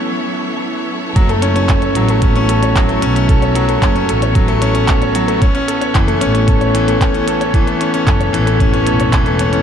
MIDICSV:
0, 0, Header, 1, 5, 480
1, 0, Start_track
1, 0, Key_signature, 3, "minor"
1, 0, Tempo, 530973
1, 1054, Time_signature, 4, 2, 24, 8
1, 8699, End_track
2, 0, Start_track
2, 0, Title_t, "String section"
2, 0, Program_c, 0, 48
2, 0, Note_on_c, 0, 54, 79
2, 0, Note_on_c, 0, 59, 71
2, 0, Note_on_c, 0, 64, 73
2, 0, Note_on_c, 0, 69, 65
2, 0, Note_on_c, 0, 73, 73
2, 1040, Note_off_c, 0, 59, 0
2, 1051, Note_on_c, 0, 59, 92
2, 1058, Note_off_c, 0, 54, 0
2, 8699, Note_off_c, 0, 59, 0
2, 8699, Note_off_c, 0, 64, 0
2, 8699, Note_off_c, 0, 69, 0
2, 8699, Note_off_c, 0, 73, 0
2, 8699, End_track
3, 0, Start_track
3, 0, Title_t, "Grand piano"
3, 0, Program_c, 1, 0
3, 0, Control_c, 1, 64, 127
3, 0, Note_on_c, 1, 52, 103
3, 0, Note_on_c, 1, 57, 95
3, 0, Note_on_c, 1, 61, 106
3, 0, Note_on_c, 1, 69, 80
3, 0, Note_on_c, 1, 73, 81
3, 1047, Note_on_c, 1, 54, 103
3, 1064, Note_off_c, 1, 61, 0
3, 1064, Control_c, 1, 64, 0
3, 1069, Note_off_c, 1, 52, 0
3, 1069, Note_off_c, 1, 57, 0
3, 1070, Note_off_c, 1, 69, 0
3, 1071, Note_off_c, 1, 73, 0
3, 1165, Note_off_c, 1, 54, 0
3, 1170, Note_on_c, 1, 57, 96
3, 1217, Control_c, 1, 64, 127
3, 1284, Note_on_c, 1, 61, 95
3, 1286, Note_off_c, 1, 57, 0
3, 1391, Note_off_c, 1, 61, 0
3, 1405, Note_on_c, 1, 61, 102
3, 1478, Note_off_c, 1, 61, 0
3, 1532, Note_on_c, 1, 69, 79
3, 1647, Note_off_c, 1, 69, 0
3, 1650, Note_on_c, 1, 73, 72
3, 1766, Note_off_c, 1, 73, 0
3, 1776, Note_on_c, 1, 54, 96
3, 1889, Note_off_c, 1, 54, 0
3, 1897, Note_on_c, 1, 57, 96
3, 2010, Note_off_c, 1, 57, 0
3, 2015, Note_on_c, 1, 61, 94
3, 2121, Note_off_c, 1, 61, 0
3, 2135, Note_on_c, 1, 61, 106
3, 2203, Note_off_c, 1, 61, 0
3, 2255, Note_on_c, 1, 69, 78
3, 2368, Note_off_c, 1, 69, 0
3, 2380, Note_on_c, 1, 73, 70
3, 2491, Note_off_c, 1, 73, 0
3, 2495, Note_on_c, 1, 54, 103
3, 2608, Note_on_c, 1, 57, 106
3, 2609, Note_off_c, 1, 54, 0
3, 2725, Note_off_c, 1, 57, 0
3, 2732, Note_on_c, 1, 61, 108
3, 2839, Note_off_c, 1, 61, 0
3, 2852, Note_on_c, 1, 61, 100
3, 2921, Note_off_c, 1, 61, 0
3, 2977, Note_on_c, 1, 69, 89
3, 3089, Note_off_c, 1, 69, 0
3, 3095, Note_on_c, 1, 73, 74
3, 3208, Note_off_c, 1, 73, 0
3, 3216, Note_on_c, 1, 54, 100
3, 3329, Note_off_c, 1, 54, 0
3, 3339, Note_on_c, 1, 57, 98
3, 3450, Note_off_c, 1, 57, 0
3, 3459, Note_on_c, 1, 61, 106
3, 3567, Note_off_c, 1, 61, 0
3, 3580, Note_on_c, 1, 61, 102
3, 3645, Note_off_c, 1, 61, 0
3, 3701, Note_on_c, 1, 69, 81
3, 3811, Note_off_c, 1, 69, 0
3, 3818, Note_on_c, 1, 73, 76
3, 3930, Note_off_c, 1, 73, 0
3, 3934, Note_on_c, 1, 54, 95
3, 4048, Note_off_c, 1, 54, 0
3, 4054, Note_on_c, 1, 57, 110
3, 4168, Note_off_c, 1, 57, 0
3, 4173, Note_on_c, 1, 61, 108
3, 4280, Note_off_c, 1, 61, 0
3, 4294, Note_on_c, 1, 61, 101
3, 4362, Note_off_c, 1, 61, 0
3, 4417, Note_on_c, 1, 69, 88
3, 4529, Note_off_c, 1, 69, 0
3, 4540, Note_on_c, 1, 73, 76
3, 4651, Note_off_c, 1, 73, 0
3, 4661, Note_on_c, 1, 54, 101
3, 4771, Note_off_c, 1, 54, 0
3, 4773, Note_on_c, 1, 57, 98
3, 4887, Note_off_c, 1, 57, 0
3, 4899, Note_on_c, 1, 61, 103
3, 4906, Control_c, 1, 64, 0
3, 4999, Note_off_c, 1, 61, 0
3, 5013, Note_on_c, 1, 61, 101
3, 5082, Note_off_c, 1, 61, 0
3, 5090, Control_c, 1, 64, 127
3, 5133, Note_on_c, 1, 69, 77
3, 5247, Note_off_c, 1, 69, 0
3, 5254, Note_on_c, 1, 73, 76
3, 5368, Note_off_c, 1, 73, 0
3, 5374, Note_on_c, 1, 52, 100
3, 5488, Note_off_c, 1, 52, 0
3, 5493, Note_on_c, 1, 57, 99
3, 5608, Note_off_c, 1, 57, 0
3, 5613, Note_on_c, 1, 61, 104
3, 5716, Note_off_c, 1, 61, 0
3, 5730, Note_on_c, 1, 61, 91
3, 5800, Note_off_c, 1, 61, 0
3, 5851, Note_on_c, 1, 69, 81
3, 5967, Note_off_c, 1, 69, 0
3, 5977, Note_on_c, 1, 73, 79
3, 6089, Note_off_c, 1, 73, 0
3, 6098, Note_on_c, 1, 52, 106
3, 6210, Note_off_c, 1, 52, 0
3, 6220, Note_on_c, 1, 57, 96
3, 6331, Note_off_c, 1, 57, 0
3, 6336, Note_on_c, 1, 61, 103
3, 6441, Note_off_c, 1, 61, 0
3, 6455, Note_on_c, 1, 61, 101
3, 6523, Note_off_c, 1, 61, 0
3, 6579, Note_on_c, 1, 69, 80
3, 6690, Note_off_c, 1, 69, 0
3, 6698, Note_on_c, 1, 73, 75
3, 6810, Note_off_c, 1, 73, 0
3, 6815, Note_on_c, 1, 52, 100
3, 6928, Note_off_c, 1, 52, 0
3, 6934, Note_on_c, 1, 57, 100
3, 7048, Note_off_c, 1, 57, 0
3, 7056, Note_on_c, 1, 61, 93
3, 7164, Note_off_c, 1, 61, 0
3, 7177, Note_on_c, 1, 61, 101
3, 7244, Note_off_c, 1, 61, 0
3, 7296, Note_on_c, 1, 69, 80
3, 7409, Note_off_c, 1, 69, 0
3, 7413, Note_on_c, 1, 73, 75
3, 7528, Note_off_c, 1, 73, 0
3, 7530, Note_on_c, 1, 52, 100
3, 7646, Note_off_c, 1, 52, 0
3, 7654, Note_on_c, 1, 57, 96
3, 7768, Note_off_c, 1, 57, 0
3, 7780, Note_on_c, 1, 61, 95
3, 7883, Note_off_c, 1, 61, 0
3, 7896, Note_on_c, 1, 61, 95
3, 7963, Note_off_c, 1, 61, 0
3, 8015, Note_on_c, 1, 69, 78
3, 8128, Note_off_c, 1, 69, 0
3, 8139, Note_on_c, 1, 73, 73
3, 8250, Note_off_c, 1, 73, 0
3, 8258, Note_on_c, 1, 52, 102
3, 8370, Note_off_c, 1, 52, 0
3, 8379, Note_on_c, 1, 57, 103
3, 8491, Note_off_c, 1, 57, 0
3, 8501, Note_on_c, 1, 61, 103
3, 8603, Note_off_c, 1, 61, 0
3, 8617, Note_on_c, 1, 61, 95
3, 8684, Note_off_c, 1, 61, 0
3, 8699, End_track
4, 0, Start_track
4, 0, Title_t, "Double bass section"
4, 0, Program_c, 2, 48
4, 1050, Note_on_c, 2, 30, 98
4, 1721, Note_off_c, 2, 30, 0
4, 1768, Note_on_c, 2, 33, 95
4, 2680, Note_off_c, 2, 33, 0
4, 2733, Note_on_c, 2, 35, 90
4, 3402, Note_off_c, 2, 35, 0
4, 3454, Note_on_c, 2, 30, 92
4, 3630, Note_off_c, 2, 30, 0
4, 3696, Note_on_c, 2, 33, 90
4, 4604, Note_off_c, 2, 33, 0
4, 5379, Note_on_c, 2, 30, 90
4, 5553, Note_off_c, 2, 30, 0
4, 5614, Note_on_c, 2, 33, 99
4, 6523, Note_off_c, 2, 33, 0
4, 7296, Note_on_c, 2, 30, 88
4, 7471, Note_off_c, 2, 30, 0
4, 7536, Note_on_c, 2, 33, 94
4, 7776, Note_on_c, 2, 30, 74
4, 7951, Note_off_c, 2, 30, 0
4, 8013, Note_on_c, 2, 28, 85
4, 8444, Note_off_c, 2, 33, 0
4, 8683, Note_off_c, 2, 28, 0
4, 8699, End_track
5, 0, Start_track
5, 0, Title_t, "Drums"
5, 1049, Note_on_c, 9, 36, 108
5, 1049, Note_on_c, 9, 42, 43
5, 1139, Note_off_c, 9, 36, 0
5, 1140, Note_off_c, 9, 42, 0
5, 1170, Note_on_c, 9, 42, 21
5, 1260, Note_off_c, 9, 42, 0
5, 1287, Note_on_c, 9, 42, 75
5, 1378, Note_off_c, 9, 42, 0
5, 1409, Note_on_c, 9, 42, 28
5, 1499, Note_off_c, 9, 42, 0
5, 1527, Note_on_c, 9, 39, 93
5, 1527, Note_on_c, 9, 42, 38
5, 1529, Note_on_c, 9, 36, 108
5, 1618, Note_off_c, 9, 39, 0
5, 1618, Note_off_c, 9, 42, 0
5, 1620, Note_off_c, 9, 36, 0
5, 1646, Note_on_c, 9, 42, 22
5, 1737, Note_off_c, 9, 42, 0
5, 1766, Note_on_c, 9, 42, 72
5, 1857, Note_off_c, 9, 42, 0
5, 1885, Note_on_c, 9, 42, 31
5, 1976, Note_off_c, 9, 42, 0
5, 2006, Note_on_c, 9, 42, 44
5, 2010, Note_on_c, 9, 36, 100
5, 2096, Note_off_c, 9, 42, 0
5, 2100, Note_off_c, 9, 36, 0
5, 2130, Note_on_c, 9, 42, 21
5, 2220, Note_off_c, 9, 42, 0
5, 2252, Note_on_c, 9, 42, 78
5, 2342, Note_off_c, 9, 42, 0
5, 2374, Note_on_c, 9, 42, 33
5, 2464, Note_off_c, 9, 42, 0
5, 2491, Note_on_c, 9, 36, 105
5, 2497, Note_on_c, 9, 39, 96
5, 2497, Note_on_c, 9, 42, 40
5, 2582, Note_off_c, 9, 36, 0
5, 2587, Note_off_c, 9, 39, 0
5, 2587, Note_off_c, 9, 42, 0
5, 2614, Note_on_c, 9, 42, 20
5, 2704, Note_off_c, 9, 42, 0
5, 2733, Note_on_c, 9, 42, 72
5, 2823, Note_off_c, 9, 42, 0
5, 2859, Note_on_c, 9, 42, 33
5, 2949, Note_off_c, 9, 42, 0
5, 2973, Note_on_c, 9, 36, 116
5, 2975, Note_on_c, 9, 42, 47
5, 3063, Note_off_c, 9, 36, 0
5, 3065, Note_off_c, 9, 42, 0
5, 3095, Note_on_c, 9, 42, 20
5, 3185, Note_off_c, 9, 42, 0
5, 3214, Note_on_c, 9, 42, 81
5, 3304, Note_off_c, 9, 42, 0
5, 3333, Note_on_c, 9, 42, 30
5, 3424, Note_off_c, 9, 42, 0
5, 3454, Note_on_c, 9, 36, 101
5, 3458, Note_on_c, 9, 39, 95
5, 3458, Note_on_c, 9, 42, 45
5, 3544, Note_off_c, 9, 36, 0
5, 3548, Note_off_c, 9, 39, 0
5, 3548, Note_off_c, 9, 42, 0
5, 3577, Note_on_c, 9, 42, 21
5, 3667, Note_off_c, 9, 42, 0
5, 3698, Note_on_c, 9, 42, 75
5, 3788, Note_off_c, 9, 42, 0
5, 3816, Note_on_c, 9, 42, 32
5, 3907, Note_off_c, 9, 42, 0
5, 3935, Note_on_c, 9, 42, 42
5, 3936, Note_on_c, 9, 36, 105
5, 4025, Note_off_c, 9, 42, 0
5, 4027, Note_off_c, 9, 36, 0
5, 4052, Note_on_c, 9, 42, 22
5, 4142, Note_off_c, 9, 42, 0
5, 4175, Note_on_c, 9, 42, 75
5, 4265, Note_off_c, 9, 42, 0
5, 4292, Note_on_c, 9, 42, 34
5, 4383, Note_off_c, 9, 42, 0
5, 4412, Note_on_c, 9, 39, 101
5, 4412, Note_on_c, 9, 42, 41
5, 4417, Note_on_c, 9, 36, 109
5, 4502, Note_off_c, 9, 39, 0
5, 4502, Note_off_c, 9, 42, 0
5, 4508, Note_off_c, 9, 36, 0
5, 4535, Note_on_c, 9, 42, 20
5, 4626, Note_off_c, 9, 42, 0
5, 4656, Note_on_c, 9, 42, 79
5, 4746, Note_off_c, 9, 42, 0
5, 4776, Note_on_c, 9, 42, 34
5, 4867, Note_off_c, 9, 42, 0
5, 4898, Note_on_c, 9, 36, 109
5, 4898, Note_on_c, 9, 42, 47
5, 4988, Note_off_c, 9, 36, 0
5, 4988, Note_off_c, 9, 42, 0
5, 5015, Note_on_c, 9, 42, 22
5, 5106, Note_off_c, 9, 42, 0
5, 5138, Note_on_c, 9, 42, 80
5, 5229, Note_off_c, 9, 42, 0
5, 5257, Note_on_c, 9, 42, 31
5, 5347, Note_off_c, 9, 42, 0
5, 5378, Note_on_c, 9, 36, 110
5, 5378, Note_on_c, 9, 39, 90
5, 5378, Note_on_c, 9, 42, 44
5, 5468, Note_off_c, 9, 36, 0
5, 5468, Note_off_c, 9, 39, 0
5, 5468, Note_off_c, 9, 42, 0
5, 5499, Note_on_c, 9, 42, 24
5, 5590, Note_off_c, 9, 42, 0
5, 5617, Note_on_c, 9, 42, 80
5, 5708, Note_off_c, 9, 42, 0
5, 5739, Note_on_c, 9, 42, 34
5, 5829, Note_off_c, 9, 42, 0
5, 5857, Note_on_c, 9, 36, 101
5, 5857, Note_on_c, 9, 42, 46
5, 5947, Note_off_c, 9, 42, 0
5, 5948, Note_off_c, 9, 36, 0
5, 5978, Note_on_c, 9, 42, 21
5, 6068, Note_off_c, 9, 42, 0
5, 6100, Note_on_c, 9, 42, 78
5, 6191, Note_off_c, 9, 42, 0
5, 6221, Note_on_c, 9, 42, 35
5, 6311, Note_off_c, 9, 42, 0
5, 6336, Note_on_c, 9, 36, 114
5, 6341, Note_on_c, 9, 39, 95
5, 6341, Note_on_c, 9, 42, 43
5, 6427, Note_off_c, 9, 36, 0
5, 6432, Note_off_c, 9, 39, 0
5, 6432, Note_off_c, 9, 42, 0
5, 6460, Note_on_c, 9, 42, 21
5, 6550, Note_off_c, 9, 42, 0
5, 6578, Note_on_c, 9, 42, 78
5, 6668, Note_off_c, 9, 42, 0
5, 6700, Note_on_c, 9, 42, 33
5, 6791, Note_off_c, 9, 42, 0
5, 6815, Note_on_c, 9, 36, 104
5, 6817, Note_on_c, 9, 42, 46
5, 6905, Note_off_c, 9, 36, 0
5, 6907, Note_off_c, 9, 42, 0
5, 6938, Note_on_c, 9, 42, 21
5, 7029, Note_off_c, 9, 42, 0
5, 7059, Note_on_c, 9, 42, 75
5, 7149, Note_off_c, 9, 42, 0
5, 7177, Note_on_c, 9, 42, 32
5, 7268, Note_off_c, 9, 42, 0
5, 7295, Note_on_c, 9, 36, 108
5, 7299, Note_on_c, 9, 39, 88
5, 7299, Note_on_c, 9, 42, 44
5, 7385, Note_off_c, 9, 36, 0
5, 7389, Note_off_c, 9, 39, 0
5, 7389, Note_off_c, 9, 42, 0
5, 7419, Note_on_c, 9, 42, 23
5, 7509, Note_off_c, 9, 42, 0
5, 7541, Note_on_c, 9, 42, 80
5, 7631, Note_off_c, 9, 42, 0
5, 7659, Note_on_c, 9, 42, 34
5, 7750, Note_off_c, 9, 42, 0
5, 7774, Note_on_c, 9, 36, 99
5, 7778, Note_on_c, 9, 42, 45
5, 7865, Note_off_c, 9, 36, 0
5, 7868, Note_off_c, 9, 42, 0
5, 7898, Note_on_c, 9, 42, 21
5, 7988, Note_off_c, 9, 42, 0
5, 8015, Note_on_c, 9, 42, 78
5, 8105, Note_off_c, 9, 42, 0
5, 8133, Note_on_c, 9, 42, 31
5, 8224, Note_off_c, 9, 42, 0
5, 8253, Note_on_c, 9, 39, 95
5, 8253, Note_on_c, 9, 42, 46
5, 8254, Note_on_c, 9, 36, 113
5, 8343, Note_off_c, 9, 39, 0
5, 8343, Note_off_c, 9, 42, 0
5, 8344, Note_off_c, 9, 36, 0
5, 8371, Note_on_c, 9, 42, 20
5, 8462, Note_off_c, 9, 42, 0
5, 8491, Note_on_c, 9, 42, 77
5, 8582, Note_off_c, 9, 42, 0
5, 8613, Note_on_c, 9, 42, 32
5, 8699, Note_off_c, 9, 42, 0
5, 8699, End_track
0, 0, End_of_file